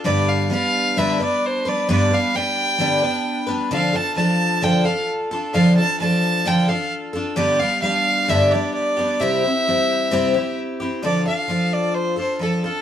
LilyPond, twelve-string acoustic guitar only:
\new Staff \with { instrumentName = "Twelve-string acoustic guitar" } { \time 4/4 \key d \dorian \tempo 4 = 131 <g, d g b d' b'>4 <g b d' b'>4 <g, d g b d' b'>8 <g b d' b'>4 <g b d' b'>8 | <g, d g b d' b'>8 <g b d' b'>8 <g b d' b'>4 <g, d g b d' b'>8 <g b d' b'>4 <g b d' b'>8 | <d f d' f' a'>8 <d' f' a'>8 <f d' f' a'>4 <d f d' f' a'>8 <d' f' a'>4 <d' f' a'>8 | <d f d' f' a'>8 <d' f' a'>8 <f d' f' a'>4 <d f d' f' a'>8 <d' f' a'>4 <d' f' a'>8 |
<g, d g b d' g'>8 <g b d' g'>8 <g b d' g'>4 <g, d g b d' g'>8 <g b d' g'>4 <g b d' g'>8 | <c g c' e' g'>8 <c' e' g'>8 <g c' e' g'>4 <c g c' e' g'>8 <c' e' g'>4 <c' e' g'>8 | <d f d' f' a'>8 <d' f' a'>8 <f d' f' a'>4. <d' f' a'>8 <f d' f' a'>8 <d' f' a'>8 | }